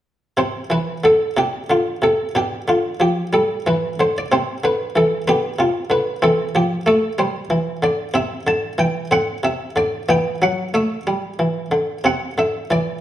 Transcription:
0.37 C3 C4 C5
0.70 E3 B4
1.04 D3 A4
1.37 C3 D4 G4
1.70 D3 F4
2.02 C3 A4
2.35 B2 D4 G4
2.68 D3 F4
3.00 F3 G4
3.33 G3 A4
3.67 E3 B4
4.00 D3 C5
4.18 D5
4.32 C3 C4 C5
4.64 D3 B4
4.96 E3 A4
5.28 D3 B3 G4
5.59 C3 F4
5.90 D3 B4
6.22 E3 C4 A4
6.55 F3 G4
6.86 A3 A4
7.18 G3 C5
7.50 E3
7.83 D3 D5
8.14 C3 C4 E5
8.47 D3 A5
8.78 E3 G5
9.11 D3 C4 F#5
9.43 C3 E5
9.76 D3 D5
10.09 E3 B3 G5
10.42 F#3 F#5
10.74 A3 E5
11.07 G3
11.39 E3
11.71 D3
12.04 C3 C4 F#5
12.38 D3 E5
12.71 E3 D5

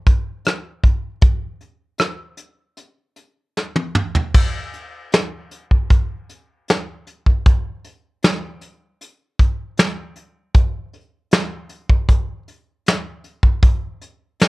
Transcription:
0.07 kick, closed hi-hat
0.45 cross-stick, closed hi-hat
0.83 kick, closed hi-hat
1.21 kick, closed hi-hat
1.61 closed hi-hat
1.99 cross-stick, closed hi-hat
2.37 closed hi-hat
2.77 closed hi-hat
3.16 closed hi-hat
3.57 snare
3.76 high tom
3.95 mid tom
4.15 floor tom
4.34 kick, crash
4.74 closed hi-hat
5.12 snare, closed hi-hat
5.51 closed hi-hat
5.71 kick
5.90 kick, closed hi-hat
6.30 closed hi-hat
6.68 snare, closed hi-hat
7.07 closed hi-hat
7.26 kick
7.45 kick, closed hi-hat
7.85 closed hi-hat
8.23 snare, closed hi-hat
8.61 closed hi-hat
9.01 closed hi-hat
9.39 kick, closed hi-hat
9.78 snare, closed hi-hat
10.16 closed hi-hat
10.54 kick, closed hi-hat
10.93 closed hi-hat
11.31 snare, closed hi-hat
11.69 closed hi-hat
11.89 kick
12.09 kick, closed hi-hat
12.48 closed hi-hat
12.87 snare, closed hi-hat
13.24 closed hi-hat
13.43 kick
13.63 kick, closed hi-hat
14.01 closed hi-hat
14.40 snare, closed hi-hat

